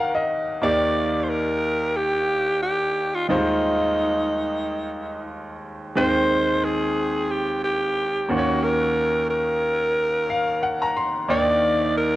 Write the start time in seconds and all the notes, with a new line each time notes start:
Already playing: D#2 D#3 A#3 F#4 A#4 C#5 F5 F#5 A#5
0.15 D#5
0.62 D#2 D#3 A#3 D#4 G4 D5
1.24 C5
1.29 A#4
1.96 G4
2.62 G4
3.14 F4
3.29 D#2 D#3 G3 D#4 F4 C5
3.35 G#3
5.95 D#2 D#3 G#3 C4 D#4 C5 G5
6.64 G#4
7.30 G4
7.64 G4
8.29 D#2 D#3 A#3 C#4 F#4 C5
8.37 C#5
8.63 A#4
9.30 A#4
10.30 F5
10.63 F#5
10.82 A#5
10.97 C6
11.28 D#2 D#3 A#3 D4 D#4 D5 G5
11.98 A#4